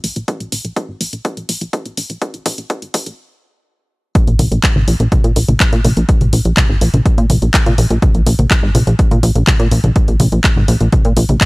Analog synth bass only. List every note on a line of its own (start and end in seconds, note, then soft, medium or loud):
0.04 0.12 A#1 loud
0.16 0.24 A#1 medium
0.40 0.48 A#1 medium
0.52 0.61 A#1 loud
0.65 0.73 A#1 medium
0.89 0.97 G#1 medium
1.00 1.09 A#1 medium
1.13 1.21 A#1 medium
1.37 1.45 A#1 medium
1.49 1.57 A#1 medium
1.61 1.69 A#1 medium
1.86 1.94 A#1 medium
1.97 2.06 A#1 loud
2.10 2.18 A#1 medium
2.34 2.42 A#1 medium
2.46 2.54 A#1 loud
2.58 2.66 A#1 medium
2.82 2.90 G#1 medium
2.94 3.03 A#1 loud
3.06 3.15 A#1 medium
4.27 4.36 A#1 medium
4.39 4.48 A#1 loud
4.51 4.60 A#1 medium
4.76 4.84 G#1 medium
4.88 4.96 A#1 loud
5.00 5.08 A#1 medium
5.24 5.32 A#2 medium
5.36 5.45 A#1 loud
5.48 5.57 A#1 medium
5.72 5.81 A#2 medium
5.85 5.93 A#1 loud
5.97 6.05 A#1 medium
6.21 6.29 A#1 medium
6.33 6.41 A#1 loud
6.45 6.53 A#1 medium
6.69 6.78 G#1 medium
6.81 6.90 A#1 loud
6.94 7.02 A#1 medium
7.18 7.26 A#2 medium
7.30 7.38 A#1 loud
7.42 7.50 A#1 medium
7.66 7.74 A#2 medium
7.78 7.87 A#1 loud
7.90 7.99 A#1 medium
8.15 8.23 A#1 medium
8.26 8.35 A#1 loud
8.39 8.47 A#1 medium
8.63 8.71 G#1 medium
8.75 8.83 A#1 loud
8.87 8.95 A#1 medium
9.11 9.19 A#2 medium
9.23 9.32 A#1 loud
9.35 9.44 A#1 medium
9.60 9.68 A#2 medium
9.71 9.80 A#1 loud
9.84 9.92 A#1 medium
10.08 10.16 A#1 medium
10.20 10.28 A#1 loud
10.32 10.40 A#1 medium
10.56 10.65 G#1 medium
10.68 10.77 A#1 loud
10.81 10.89 A#1 medium
11.05 11.13 A#2 medium
11.17 11.25 A#1 loud
11.29 11.37 A#1 medium